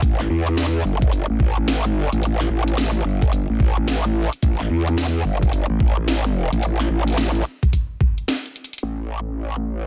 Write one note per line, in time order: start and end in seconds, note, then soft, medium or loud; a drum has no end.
0.02 0.28 A1 loud
0.02 kick loud
0.02 closed hi-hat medium
0.20 snare soft
0.30 0.83 E2 loud
0.47 closed hi-hat medium
0.57 snare loud
0.57 closed hi-hat medium
0.85 1.27 G1 loud
1.02 kick loud
1.02 closed hi-hat soft
1.12 closed hi-hat medium
1.30 1.86 A1 loud
1.40 kick loud
1.68 snare loud
1.68 closed hi-hat medium
1.86 2.10 G#1 loud
2.12 2.49 A1 loud
2.12 closed hi-hat soft
2.23 closed hi-hat medium
2.40 snare soft
2.50 3.03 A1 medium
2.68 closed hi-hat soft
2.78 snare loud
2.78 closed hi-hat medium
3.05 3.47 G1 medium
3.22 kick loud
3.22 closed hi-hat soft
3.33 closed hi-hat medium
3.50 4.30 A1 medium
3.60 kick loud
3.88 snare loud
3.88 closed hi-hat medium
4.33 closed hi-hat soft
4.42 4.68 A1 medium
4.42 kick loud
4.42 closed hi-hat medium
4.60 snare soft
4.70 5.24 E2 loud
4.87 closed hi-hat soft
4.98 snare loud
4.98 closed hi-hat medium
5.25 5.67 G1 loud
5.43 kick loud
5.43 closed hi-hat soft
5.53 closed hi-hat medium
5.70 6.50 A1 medium
5.80 kick loud
6.08 snare loud
6.08 closed hi-hat medium
6.52 6.89 A1 medium
6.52 closed hi-hat medium
6.63 closed hi-hat medium
6.80 snare soft
6.80 closed hi-hat soft
6.90 7.44 A1 loud
7.08 closed hi-hat medium
7.10 closed hi-hat soft
7.12 closed hi-hat soft
7.15 snare loud
7.15 closed hi-hat soft
7.18 closed hi-hat medium
7.26 closed hi-hat soft
7.31 closed hi-hat soft
7.35 closed hi-hat soft
7.63 kick loud
7.63 closed hi-hat soft
7.73 kick medium
7.73 closed hi-hat medium
8.01 kick loud
8.18 closed hi-hat soft
8.28 snare loud
8.28 closed hi-hat medium
8.46 closed hi-hat soft
8.56 closed hi-hat medium
8.64 closed hi-hat medium
8.73 closed hi-hat medium
8.78 closed hi-hat medium
8.83 9.87 A1 medium